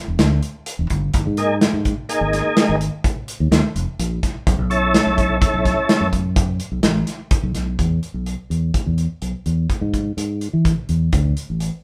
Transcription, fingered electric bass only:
0.08 0.17 E1 medium
0.19 0.39 D2 medium
0.79 0.88 E1 medium
0.91 1.10 G1 medium
1.14 1.24 G#1 medium
1.26 1.65 G#2 medium
1.74 1.93 G#2 medium
2.21 2.40 G#1 medium
2.69 2.88 G#1 medium
3.40 3.50 D#2 medium
3.51 3.61 D#2 loud
3.76 3.85 F1 medium
3.99 4.19 A#1 medium
4.47 4.57 B1 medium
4.59 4.97 B1 medium
5.07 5.45 B1 medium
5.54 5.73 B1 medium
6.01 6.59 F#2 medium
6.72 6.81 B1 medium
6.83 7.03 A1 medium
7.43 7.53 B1 medium
7.55 7.74 B1 medium
7.79 7.98 E2 medium
8.14 8.34 B1 medium
8.50 8.70 E2 medium
8.86 9.06 E2 medium
9.22 9.32 B1 medium
9.46 9.65 E2 medium
9.81 10.11 G#2 medium
10.17 10.46 G#2 medium
10.53 10.73 E3 medium
10.89 11.08 E2 medium
11.13 11.32 D2 medium
11.50 11.69 A1 medium

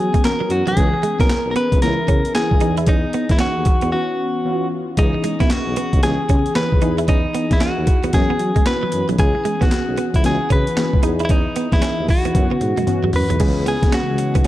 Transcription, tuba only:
0.00 0.11 F#3 medium
0.50 0.63 F#2 medium
0.66 0.74 B1 medium
0.77 0.90 C#2 loud
1.20 1.28 B1 medium
1.45 1.53 B1 medium
1.72 1.80 C#2 medium
1.82 1.95 C#2 loud
2.08 2.22 C#3 medium
2.35 2.41 C#2 soft
2.52 2.59 C#2 medium
2.60 3.03 E2 medium
3.30 3.38 E2 medium
3.56 3.64 D#2 medium
3.82 3.91 E2 medium
4.97 5.11 C#2 loud
5.40 5.48 B1 medium
5.67 5.75 B1 medium
5.93 6.01 C#2 medium
6.03 6.16 C#2 medium
6.29 6.43 C#3 medium
6.55 6.62 C#2 soft
6.72 6.80 C#2 medium
6.81 7.24 E2 loud
7.51 7.59 E2 medium
7.77 7.85 D#2 medium
8.03 8.11 E2 medium
8.13 8.27 F#2 loud
8.39 8.53 F#3 medium
8.92 9.06 F#2 medium
9.09 9.17 B1 medium
9.19 9.32 C#2 loud
9.61 9.69 B1 medium
9.88 9.96 B1 medium
10.14 10.22 C#2 medium
10.25 10.38 C#2 medium
10.51 10.64 C#3 loud
10.78 10.84 C#2 soft
10.93 11.01 C#2 medium
11.03 11.46 E2 loud
11.72 11.80 E2 medium
11.99 12.07 D#2 medium
12.25 12.33 E2 medium
12.35 12.48 F#2 medium
12.61 12.74 G#2 medium
12.77 12.85 F#2 medium
13.03 13.11 E2 medium
13.13 13.27 F#2 medium
13.30 13.38 B1 medium
13.40 13.75 C#2 loud
13.82 13.91 B1 medium
13.93 13.99 C#2 soft
14.09 14.17 C#2 medium
14.35 14.43 B1 medium

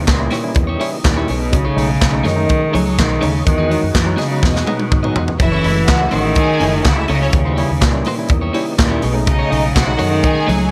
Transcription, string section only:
5.39 5.85 E4 loud
5.39 5.85 E5 loud
5.88 6.34 F#4 loud
5.88 6.34 F#5 loud
6.36 6.82 G#4 loud
6.36 6.82 G#5 loud
6.85 6.94 F#4 medium
6.85 6.94 F#5 loud
6.98 7.07 E4 medium
6.98 7.07 E5 loud
7.11 7.20 D#4 medium
7.11 7.20 D#5 loud
7.22 7.31 C#4 loud
7.22 7.31 C#5 loud
9.27 9.73 D#4 loud
9.27 9.73 D#5 loud
9.75 10.21 F#4 loud
9.75 10.21 F#5 loud
10.24 10.69 G#4 loud
10.24 10.70 G#5 loud

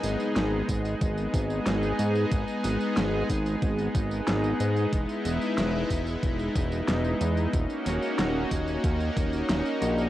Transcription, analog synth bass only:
0.04 0.17 G#1 medium
0.36 0.62 G#1 loud
0.69 0.95 G#1 medium
1.01 1.28 G#1 medium
1.34 1.60 G#1 loud
1.67 1.93 G#1 medium
1.99 2.25 G#2 medium
2.32 2.45 G#1 loud
2.64 2.78 G#1 medium
2.97 3.23 G#1 loud
3.30 3.56 G#1 medium
3.62 3.88 G#1 medium
3.95 4.21 G#1 loud
4.27 4.54 G#1 medium
4.60 4.86 G#2 medium
4.93 5.06 E1 loud
5.25 5.38 E1 medium
5.58 5.84 E1 loud
5.90 6.17 E1 medium
6.23 6.49 E1 medium
6.56 6.82 E1 loud
6.88 7.15 E1 medium
7.21 7.47 E2 medium
7.53 7.67 D#1 loud
7.86 7.99 D#1 medium
8.19 8.45 D#1 medium
8.51 8.78 D#1 medium
8.84 9.10 D#2 loud
9.17 9.43 D#1 medium
9.49 9.62 D#1 medium
9.82 10.08 A#1 loud

